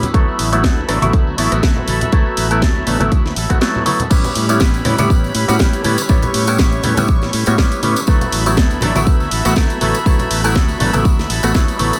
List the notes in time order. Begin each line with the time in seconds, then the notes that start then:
Already playing: G3 B3 C#4 E4 G4 C#5 B5
0.02 C#4 E4 B4, closed hi-hat, tambourine, low conga
0.14 D2 F#3 A3 B3 E4 F#4 A4 E5 B5, kick, closed hi-hat
0.27 B3 E4 A4, tambourine
0.39 A1, open hi-hat
0.52 F#3 A3 B3 E4 A4, closed hi-hat, tambourine
0.63 D2 F#3 B3 E4 A4, kick, snare, closed hi-hat, tambourine
0.78 tambourine
0.88 A1 F#3 A3 B3 D4 E4 A4, cross-stick, open hi-hat
1.02 A1 F#3 A3 B3 E4, closed hi-hat, tambourine, high conga
1.13 D2, kick, closed hi-hat, tambourine
1.27 tambourine
1.38 A1 F#3 A3 B3 E4 A4, open hi-hat
1.52 A1, cross-stick, closed hi-hat, tambourine
1.63 D2 F#3 B3 E4 A4, kick, snare, closed hi-hat
1.76 tambourine, low conga
1.87 A1 F#3 B3 E4 A4, open hi-hat, high conga
2.01 B3 E4 A4, closed hi-hat, tambourine, low conga
2.12 D2 F#3 A3 B3 E4 A4, kick, closed hi-hat, tambourine
2.26 B3 E4 A4, tambourine
2.37 A1, open hi-hat
2.50 F#3 A3 B3 E4 A4, closed hi-hat, tambourine
2.62 D2 F#3 B3 E4 A4, kick, snare, closed hi-hat
2.76 tambourine
2.86 A1 F#3 A3 B3 D4 E4 A4, open hi-hat, high conga
3.00 A1 F#3 A3 B3 E4 A4, closed hi-hat, tambourine, high conga
3.12 D2, kick, closed hi-hat, tambourine
3.25 snare, tambourine
3.36 A1 F#3 B3 E4 A4, open hi-hat
3.50 A1 F#3 A3 B3 F#4, kick, cross-stick, closed hi-hat, tambourine
3.61 F#3 A3 B3 E4 A4, snare, closed hi-hat, tambourine
3.74 tambourine, low conga
3.86 F#3 A3 B3 E4 A4, open hi-hat, high conga
3.99 B3 E4 A4, closed hi-hat, tambourine, low conga
4.10 A1 G3 B3 C#4 E4 G4 B4 C#5 B5, kick, crash, tambourine
4.24 C#4 E4 B4, closed hi-hat, tambourine, low conga
4.35 A2, open hi-hat
4.49 G3 B3 C#4 E4 B4, closed hi-hat, tambourine
4.60 A1 C#4 E4 B4, kick, snare, tambourine
4.74 closed hi-hat, tambourine
4.85 A2 G3 B3 C#4 E4 B4, cross-stick, open hi-hat, high conga, low conga
4.98 A2 G3 B3 C#4 E4 B4, closed hi-hat, tambourine, high conga
5.10 A1, kick, tambourine
5.23 C#4 E4 B4, tambourine
5.34 A2 G3 C#4 E4 B4, open hi-hat
5.48 A2 G3 B3 C#4 E4 F#4 B4, cross-stick, closed hi-hat, tambourine
5.59 A1 G3 B3 C#4 E4 B4, kick, snare, tambourine
5.73 closed hi-hat, tambourine
5.84 A2 G3 B3 C#4 E4 B4, open hi-hat, high conga
5.98 closed hi-hat, tambourine
6.09 A1 G3 B3 C#4 E4 B4 C#6, kick, tambourine
6.22 C#4 E4 B4, closed hi-hat, tambourine, low conga
6.34 A2, open hi-hat
6.47 G3 B3 C#4 E4 B4, closed hi-hat, tambourine
6.58 A1 G3 C#4 E4 B4, kick, snare, tambourine
6.72 closed hi-hat, tambourine
6.83 A2 G3 B3 C#4 E4 B4, open hi-hat, high conga, low conga
6.97 A2 G3 B3 C#4 E4 B4, closed hi-hat, tambourine, high conga
7.08 A1, kick, tambourine
7.21 C#4 E4 B4, snare, tambourine
7.33 A2 G3 C#4 E4 B4, open hi-hat
7.46 A2 G3 B3 C#4 E4 F#4 B4, cross-stick, closed hi-hat, tambourine
7.58 A1 G3 B3 C#4 E4 B4, kick, snare, tambourine
7.71 closed hi-hat, tambourine
7.82 A2 G3 B3 C#4 E4 B4, open hi-hat, high conga
7.96 closed hi-hat, tambourine
8.07 D2 F#3 A3 B3 E4 F#4 A4 E5 B5, kick, tambourine
8.21 B3 E4 A4, closed hi-hat, tambourine, low conga
8.32 A1, open hi-hat
8.46 F#3 A3 B3 E4 A4, closed hi-hat, tambourine
8.57 D2 F#3 B3 E4 A4, kick, snare, tambourine
8.70 closed hi-hat, tambourine
8.81 A1 F#3 A3 B3 D4 E4 A4, cross-stick, open hi-hat, high conga, low conga
8.95 A1 F#3 A3 B3 E4 A4, closed hi-hat, tambourine, high conga
9.07 D2, kick, tambourine
9.20 B3 E4 A4, tambourine
9.31 A1 F#3 B3 E4 A4, open hi-hat
9.45 A1 F#3 A3 B3 E4 F#4 A4, cross-stick, closed hi-hat, tambourine
9.56 F#3 A3 B3 E4 A4, kick, snare, tambourine
9.70 closed hi-hat, tambourine
9.81 A1 F#3 A3 B3 E4 A4, open hi-hat, high conga
9.94 closed hi-hat, tambourine
10.05 D2 F#3 A3 B3 E4 A4, kick, tambourine
10.19 B3 E4 A4, closed hi-hat, tambourine, low conga
10.31 A1, open hi-hat
10.44 F#3 A3 B3 E4 A4, closed hi-hat, tambourine
10.55 D2 F#3 B3 E4 A4, kick, snare, tambourine
10.68 closed hi-hat, tambourine
10.80 A1 F#3 A3 B3 D4 E4 A4, open hi-hat, high conga, low conga
10.93 A1 F#3 A3 B3 E4 A4, closed hi-hat, tambourine, high conga
11.05 D2, kick, tambourine
11.18 B3 E4 A4, snare, tambourine
11.29 A1 F#3 B3 E4 A4, open hi-hat
11.43 A1 F#3 A3 B3 E4 F#4 A4, cross-stick, closed hi-hat, tambourine
11.54 D2 F#3 A3 B3 E4 A4, kick, snare, tambourine
11.68 closed hi-hat, tambourine
11.79 A1 F#3 A3 B3 E4 A4, open hi-hat, high conga
11.93 B3 E4 A4, closed hi-hat, tambourine